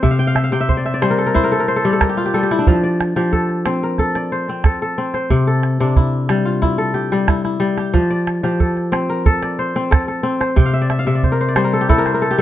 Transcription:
Already playing: kora C4 A4 C5
0.03 kora C3 E5, calabash thump
0.11 kora F5
0.19 kora G5
0.27 kora F5
0.35 kora E5, calabash click
0.44 kora F5
0.52 kora C3 G5, calabash click
0.60 kora E5
0.69 kora C5, calabash thump
0.77 kora D5
0.85 kora E5, calabash click
0.94 kora D5
1.02 kora G3 C5, calabash click
1.10 kora A#4
1.18 kora A4
1.26 kora A#4
1.34 kora E4 C5, calabash thump, calabash click
1.44 kora A#4
1.52 kora A4
1.60 kora A#4
1.68 kora C5
1.76 kora A4
1.85 kora G3 G4, calabash click
1.93 kora A4
2.01 kora A#4, calabash thump, calabash click
2.09 kora G4
2.17 kora F4
2.26 kora G4
2.34 kora G3 A4
2.43 kora G4
2.51 kora E4, calabash click
2.59 kora D4
2.67 kora F3, calabash thump
2.83 kora D5
3.01 calabash click
3.16 kora F3 G4, calabash click
3.32 kora A4, calabash thump
3.49 calabash click
3.66 kora C4, calabash click
3.83 kora A#4
3.98 kora A4, calabash thump, calabash click
4.15 kora D5, calabash click
4.32 kora C5
4.48 kora C4, calabash click
4.64 kora A4, calabash thump, calabash click
4.82 kora A4
4.98 kora C4
5.14 kora C5, calabash click
5.30 kora C3, calabash thump
5.47 kora A4
5.63 calabash click
5.80 kora C3 D4, calabash click
5.96 kora E4, calabash thump, calabash click
6.29 kora G3, calabash click
6.45 kora F4
6.62 kora E4, calabash thump, calabash click
6.78 kora A4
6.94 kora G4
7.12 kora G3, calabash click
7.28 kora E4, calabash thump, calabash click
7.44 kora E4, calabash click
7.60 kora G3
7.78 kora G4, calabash click
7.94 kora F3, calabash thump
8.10 kora D5
8.27 calabash click
8.43 kora F3 G4, calabash click
8.60 kora A4, calabash thump
8.77 calabash click
8.92 kora C4, calabash click
9.09 kora A#4
9.26 kora A4, calabash thump, calabash click
9.43 kora D5, calabash click
9.59 kora C5
9.76 kora C4, calabash click
9.91 kora A4, calabash thump, calabash click
10.08 kora A4
10.23 kora C4
10.40 kora C5, calabash click
10.56 kora C3 G5, calabash thump
10.65 kora F5
10.73 kora E5
10.82 kora D5
10.90 kora E5, calabash click
10.99 kora F5
11.07 kora C3 E5
11.15 kora D5
11.23 kora C5, calabash thump
11.32 kora A#4
11.41 kora C5, calabash click
11.48 kora D5
11.56 kora G3 C5, calabash click
11.64 kora A#4
11.73 kora A4
11.81 kora G4
11.89 kora E4 A4, calabash thump, calabash click
11.98 kora A#4
12.06 kora C5, calabash click
12.14 kora A#4
12.22 kora A4
12.31 kora G4
12.38 kora G3 A4

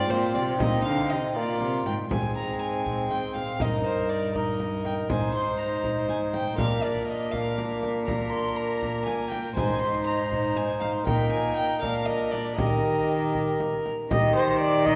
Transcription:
Already playing: bassoon C4, viola F4, violin D5
0.10 cello A#2, violin C5, frame drum
0.34 cello C3, violin D5, frame drum
0.59 cello A#2, viola D#4, violin D#5, frame drum
0.84 cello D3, violin F5
1.10 cello C3, violin D#5
1.36 cello A#2, bassoon A#3, viola F4, violin D5
1.60 cello C3, frame drum
1.86 cello G#2, violin G5, frame drum
2.11 cello G#2, bassoon C4, viola G#4, violin G#5, frame drum
2.37 violin A#5
2.62 violin G#5
2.86 frame drum
3.11 violin G5, frame drum
3.36 violin F5, frame drum
3.60 cello G2, bassoon D#4, viola A#4, violin D#5, frame drum
3.86 violin C5
4.09 violin D5
4.35 bassoon D#4, viola A#4, violin D#5, frame drum
4.60 frame drum
4.85 violin G5, frame drum
5.10 cello G#2, bassoon D#4, viola C5, violin G#5, frame drum
5.35 violin C6
5.59 violin A#5
5.84 frame drum
6.09 violin G#5, frame drum
6.34 violin G5, frame drum
6.58 cello A#2, bassoon D4, viola A#4, violin F5, frame drum
6.84 violin D5
7.08 violin D#5
7.32 bassoon D4, viola A#4, violin F5, frame drum
7.58 frame drum
7.83 frame drum
8.06 bassoon D4, viola A#4, violin A#5, frame drum
8.32 violin C6
8.56 violin A#5
8.82 frame drum
9.05 violin G#5, frame drum
9.30 violin G5, frame drum
9.57 cello G#2, bassoon D#4, viola C5, violin G#5, frame drum
9.81 violin C6
10.06 violin A#5
10.32 frame drum
10.56 violin G#5, frame drum
10.81 violin F5, frame drum
11.05 cello A#2, bassoon D#4, viola A#4, violin G5, frame drum
11.32 violin G#5
11.56 violin G5
11.82 cello A#2, bassoon D4, viola A#4, violin F5, frame drum
12.06 violin D#5, frame drum
12.31 violin D5, frame drum
12.57 cello D#3, bassoon G4, viola A#4, violin D#5, frame drum
13.35 frame drum
13.60 frame drum
13.86 frame drum
14.10 cello D#3, bassoon G4, viola D#5, violin A#5, frame drum
14.35 viola C5
14.61 viola D5
14.85 bassoon D#4, viola D#5, violin G5, frame drum

